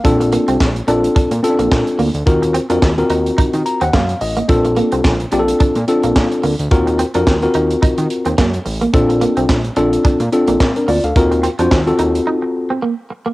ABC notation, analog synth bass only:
X:1
M:4/4
L:1/16
Q:"Swing 16ths" 1/4=108
K:Bb
V:1 name="Analog synth bass" clef=bass
B,,,3 C,, B,,,2 B,,,2 B,, B,, z B,,, B,, z D,, D,, | E,,3 F,, E,,2 E,,2 E, E, z E,, _G,,2 A,,,2 | B,,,3 C,, B,,,2 B,,,2 B,, B,, z B,,, B,, z D,, D,, | E,,3 F,, E,,2 E,,2 E, E, z E,, _G,,2 A,,,2 |
B,,,3 C,, B,,,2 B,,,2 B,, B,, z B,,, B,, z D,, D,, | E,,3 F,, E,,2 E,,2 z8 |]